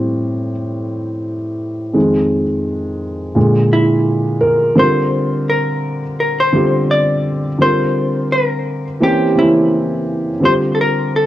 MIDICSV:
0, 0, Header, 1, 3, 480
1, 0, Start_track
1, 0, Tempo, 705882
1, 1325, Time_signature, 4, 2, 24, 8
1, 7660, End_track
2, 0, Start_track
2, 0, Title_t, "Hollow-body jazz guitar"
2, 0, Program_c, 0, 26
2, 2536, Note_on_c, 0, 64, 67
2, 3223, Note_off_c, 0, 64, 0
2, 3258, Note_on_c, 0, 72, 84
2, 3736, Note_on_c, 0, 70, 82
2, 3746, Note_off_c, 0, 72, 0
2, 4184, Note_off_c, 0, 70, 0
2, 4216, Note_on_c, 0, 70, 79
2, 4351, Note_off_c, 0, 70, 0
2, 4352, Note_on_c, 0, 72, 90
2, 4696, Note_off_c, 0, 72, 0
2, 4699, Note_on_c, 0, 74, 79
2, 5180, Note_off_c, 0, 74, 0
2, 5183, Note_on_c, 0, 72, 97
2, 5627, Note_off_c, 0, 72, 0
2, 5661, Note_on_c, 0, 70, 92
2, 6141, Note_off_c, 0, 70, 0
2, 6144, Note_on_c, 0, 67, 91
2, 6382, Note_off_c, 0, 67, 0
2, 6384, Note_on_c, 0, 64, 87
2, 7108, Note_on_c, 0, 72, 97
2, 7116, Note_off_c, 0, 64, 0
2, 7159, Note_off_c, 0, 72, 0
2, 7308, Note_on_c, 0, 69, 63
2, 7337, Note_off_c, 0, 69, 0
2, 7351, Note_on_c, 0, 70, 98
2, 7585, Note_off_c, 0, 70, 0
2, 7589, Note_on_c, 0, 69, 83
2, 7660, Note_off_c, 0, 69, 0
2, 7660, End_track
3, 0, Start_track
3, 0, Title_t, "Upright piano"
3, 0, Program_c, 1, 0
3, 0, Control_c, 1, 64, 127
3, 0, Note_on_c, 1, 45, 53
3, 0, Note_on_c, 1, 55, 49
3, 0, Note_on_c, 1, 60, 60
3, 335, Note_off_c, 1, 45, 0
3, 338, Note_off_c, 1, 55, 0
3, 339, Note_off_c, 1, 60, 0
3, 1314, Note_on_c, 1, 41, 51
3, 1320, Note_on_c, 1, 51, 47
3, 1321, Note_on_c, 1, 56, 57
3, 1335, Control_c, 1, 64, 0
3, 1439, Control_c, 1, 64, 127
3, 1651, Note_off_c, 1, 41, 0
3, 1654, Note_off_c, 1, 51, 0
3, 1655, Note_off_c, 1, 56, 0
3, 2280, Note_on_c, 1, 46, 55
3, 2286, Note_on_c, 1, 50, 48
3, 2289, Note_on_c, 1, 56, 57
3, 2293, Control_c, 1, 64, 0
3, 2400, Control_c, 1, 64, 127
3, 2996, Note_on_c, 1, 70, 86
3, 3215, Note_off_c, 1, 46, 0
3, 3219, Note_off_c, 1, 50, 0
3, 3220, Note_off_c, 1, 56, 0
3, 3224, Note_off_c, 1, 70, 0
3, 3233, Note_on_c, 1, 50, 81
3, 3239, Note_on_c, 1, 55, 61
3, 3244, Note_on_c, 1, 60, 70
3, 3253, Note_on_c, 1, 65, 67
3, 3254, Control_c, 1, 64, 0
3, 3257, Note_on_c, 1, 70, 70
3, 3381, Control_c, 1, 64, 127
3, 4077, Note_off_c, 1, 50, 0
3, 4080, Note_off_c, 1, 55, 0
3, 4082, Note_off_c, 1, 60, 0
3, 4087, Note_off_c, 1, 65, 0
3, 4089, Note_off_c, 1, 70, 0
3, 4437, Note_on_c, 1, 50, 81
3, 4443, Note_on_c, 1, 55, 67
3, 4447, Note_on_c, 1, 60, 74
3, 4454, Note_on_c, 1, 65, 66
3, 4460, Note_on_c, 1, 67, 78
3, 5073, Note_off_c, 1, 50, 0
3, 5076, Note_off_c, 1, 55, 0
3, 5077, Note_off_c, 1, 60, 0
3, 5081, Note_off_c, 1, 65, 0
3, 5084, Note_off_c, 1, 67, 0
3, 5159, Note_on_c, 1, 50, 68
3, 5163, Note_on_c, 1, 55, 61
3, 5174, Note_on_c, 1, 60, 70
3, 5175, Control_c, 1, 64, 0
3, 5179, Note_on_c, 1, 65, 73
3, 5185, Note_on_c, 1, 70, 79
3, 5300, Control_c, 1, 64, 127
3, 6000, Note_off_c, 1, 50, 0
3, 6002, Note_off_c, 1, 55, 0
3, 6007, Note_off_c, 1, 60, 0
3, 6010, Note_off_c, 1, 65, 0
3, 6013, Note_off_c, 1, 70, 0
3, 6123, Note_on_c, 1, 52, 73
3, 6127, Note_on_c, 1, 58, 70
3, 6133, Note_on_c, 1, 60, 80
3, 6135, Control_c, 1, 64, 0
3, 6139, Note_on_c, 1, 61, 78
3, 6145, Note_on_c, 1, 67, 95
3, 6274, Control_c, 1, 64, 127
3, 6335, Note_off_c, 1, 52, 0
3, 6337, Note_off_c, 1, 58, 0
3, 6340, Note_off_c, 1, 60, 0
3, 6343, Note_off_c, 1, 61, 0
3, 6346, Note_off_c, 1, 67, 0
3, 6358, Note_on_c, 1, 49, 62
3, 6363, Note_on_c, 1, 58, 68
3, 6372, Note_on_c, 1, 60, 76
3, 6378, Note_on_c, 1, 61, 62
3, 6383, Note_on_c, 1, 67, 75
3, 6402, Note_on_c, 1, 52, 80
3, 6412, Note_off_c, 1, 49, 0
3, 6996, Note_off_c, 1, 58, 0
3, 7000, Note_off_c, 1, 60, 0
3, 7003, Note_off_c, 1, 61, 0
3, 7006, Note_off_c, 1, 67, 0
3, 7015, Note_off_c, 1, 52, 0
3, 7074, Note_on_c, 1, 50, 67
3, 7082, Note_on_c, 1, 55, 66
3, 7087, Note_on_c, 1, 60, 66
3, 7093, Note_on_c, 1, 65, 74
3, 7094, Control_c, 1, 64, 0
3, 7099, Note_on_c, 1, 67, 72
3, 7200, Control_c, 1, 64, 127
3, 7660, Note_off_c, 1, 50, 0
3, 7660, Note_off_c, 1, 55, 0
3, 7660, Note_off_c, 1, 60, 0
3, 7660, Note_off_c, 1, 65, 0
3, 7660, Note_off_c, 1, 67, 0
3, 7660, End_track
0, 0, End_of_file